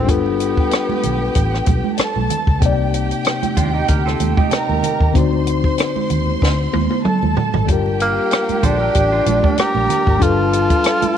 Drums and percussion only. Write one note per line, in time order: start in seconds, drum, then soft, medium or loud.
0.09 kick medium
0.09 closed hi-hat medium
0.09 muted conga soft
0.26 muted conga soft
0.40 closed hi-hat medium
0.57 kick medium
0.71 cross-stick medium
0.71 closed hi-hat medium
0.71 muted conga soft
0.90 muted conga soft
0.90 high conga medium
1.03 closed hi-hat medium
1.03 low conga medium
1.35 kick medium
1.35 closed hi-hat medium
1.35 muted conga soft
1.54 cross-stick soft
1.66 kick medium
1.66 closed hi-hat medium
1.66 high conga medium
1.84 high conga medium
1.98 cross-stick medium
1.98 closed hi-hat medium
2.16 high conga medium
2.30 closed hi-hat medium
2.30 low conga medium
2.47 kick medium
2.62 kick medium
2.62 closed hi-hat medium
2.62 muted conga soft
2.94 closed hi-hat medium
3.11 closed hi-hat soft
3.25 cross-stick medium
3.25 closed hi-hat medium
3.25 muted conga soft
3.43 closed hi-hat soft
3.43 muted conga soft
3.43 high conga medium
3.57 kick medium
3.57 closed hi-hat medium
3.57 low conga medium
3.88 kick medium
3.88 closed hi-hat medium
4.07 cross-stick soft
4.07 muted conga soft
4.20 closed hi-hat medium
4.20 high conga medium
4.37 kick medium
4.37 high conga medium
4.51 cross-stick medium
4.51 closed hi-hat medium
4.69 high conga medium
4.83 closed hi-hat medium
4.83 low conga medium
5.00 kick medium
5.15 kick medium
5.15 closed hi-hat medium
5.15 muted conga soft
5.15 low conga soft
5.33 muted conga soft
5.47 closed hi-hat medium
5.64 kick medium
5.78 cross-stick medium
5.78 closed hi-hat medium
5.78 muted conga soft
5.96 muted conga soft
5.96 high conga medium
6.10 closed hi-hat medium
6.10 low conga medium
6.27 high conga soft
6.41 kick medium
6.41 snare soft
6.41 muted conga soft
6.73 high tom medium
6.73 high conga medium
6.90 high tom soft
6.90 high conga medium
7.05 mid tom medium
7.05 muted conga soft
7.23 muted conga soft
7.23 high conga medium
7.37 floor tom medium
7.37 low conga medium
7.54 floor tom medium
7.68 kick medium
7.68 closed hi-hat medium
7.68 muted conga soft
7.86 muted conga soft
8.00 closed hi-hat medium
8.31 cross-stick medium
8.31 closed hi-hat medium
8.31 muted conga soft
8.49 closed hi-hat soft
8.49 high conga medium
8.63 kick medium
8.63 closed hi-hat medium
8.63 low conga medium
8.95 kick medium
8.95 closed hi-hat medium
8.95 muted conga soft
9.26 closed hi-hat medium
9.26 high conga medium
9.44 kick medium
9.44 high conga medium
9.58 cross-stick medium
9.58 closed hi-hat medium
9.58 muted conga soft
9.75 muted conga soft
9.75 high conga medium
9.89 cross-stick soft
9.89 closed hi-hat medium
9.89 low conga medium
10.07 kick medium
10.22 kick medium
10.22 closed hi-hat medium
10.22 muted conga soft
10.39 muted conga soft
10.53 closed hi-hat medium
10.70 kick medium
10.70 closed hi-hat soft
10.84 cross-stick medium
10.84 closed hi-hat medium
10.84 muted conga soft
11.02 closed hi-hat soft
11.02 muted conga soft
11.02 high conga medium